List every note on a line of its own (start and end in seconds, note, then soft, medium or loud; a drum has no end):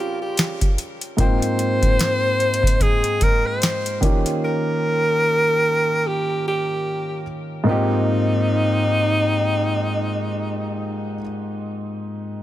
0.00 1.15 C#3 medium
0.00 1.15 G3 medium
0.00 0.73 C4 medium
0.00 0.74 C#4 medium
0.00 0.74 F4 medium
0.00 1.16 F4 medium
0.00 0.21 G4 loud
0.00 0.75 G4 medium
0.22 0.75 G4 medium
0.37 snare loud
0.37 closed hi-hat medium
0.61 kick medium
0.61 closed hi-hat medium
0.78 closed hi-hat medium
1.01 closed hi-hat medium
1.17 3.97 G#2 medium
1.17 3.98 A#3 medium
1.17 3.98 C4 medium
1.17 3.99 F4 medium
1.17 2.84 C5 loud
1.17 3.99 G5 medium
1.17 kick loud
1.17 closed hi-hat medium
1.42 closed hi-hat medium
1.59 closed hi-hat medium
1.82 kick medium
1.82 closed hi-hat medium
1.99 snare loud
1.99 closed hi-hat medium
2.40 closed hi-hat soft
2.54 closed hi-hat medium
2.63 kick loud
2.67 closed hi-hat medium
2.80 3.24 G#4 loud
2.80 kick medium
2.80 closed hi-hat medium
3.04 closed hi-hat medium
3.21 3.48 A#4 loud
3.21 kick medium
3.21 closed hi-hat medium
3.46 4.03 C5 medium
3.62 snare loud
3.62 closed hi-hat medium
3.86 closed hi-hat medium
4.01 7.22 D#3 medium
4.01 7.22 A#3 medium
4.01 7.23 C#4 medium
4.01 7.23 F4 medium
4.01 7.24 G4 medium
4.01 kick loud
4.01 closed hi-hat medium
4.26 closed hi-hat medium
4.45 6.09 A#4 loud
6.07 6.47 G4 loud
6.48 7.24 G4 medium
7.64 11.15 G#2 medium
7.64 11.16 A#3 medium
7.64 11.18 C4 medium
7.68 11.19 D#4 medium
7.68 11.20 D#4 loud
7.68 11.20 F4 medium
7.68 11.22 G4 medium